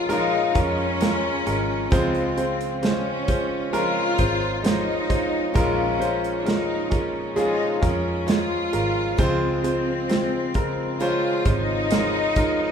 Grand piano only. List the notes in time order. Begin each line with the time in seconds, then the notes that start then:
Already playing: A#2 G#3 C#4 F4 A#4 C#5
0.09 G#3 C#4 F4 A#4
0.54 G#3 C#4 F4 A#4
1.01 G#3 C#4 F4 A#4
1.46 G#3 C#4 F4 A#4
1.92 C#3 G#3 C4 F4 C5
2.37 G#3 C4 F4 C5
2.83 G#3 C#4 F4 C5
3.28 G#3 C#4 F4 C5
3.73 G#3 C#4 F4 A#4
4.18 G#3 C#4 F4 C5
4.64 G#3 C#4 F4 C5
5.09 G#3 C#4 F4 C5
5.55 A#2 G#3 C#4 F4 A#4
5.99 G#3 C#4 F4 C5
6.45 G#3 C#4 F4 A#4
6.90 G#3 C#4 F4 A#4
7.36 G#3 C#4 F4 G#4
7.81 G#3 C#4 F4 A#4
8.27 G#3 C#4 F4 C#5
8.73 G#3 C#4 F4 A#4
9.18 C#3 G#3 C4 F4 C5
9.64 G#3 C4 F4 C5
10.09 G#3 C4 F4 C5
10.55 C#3 G#3 F4 A#4
11.01 G#3 C#4 F4 C5
11.46 G#3 C#4 F4 C5
11.91 G#3 C#4 F4 A#4
12.36 G#3 C#4 F4 A#4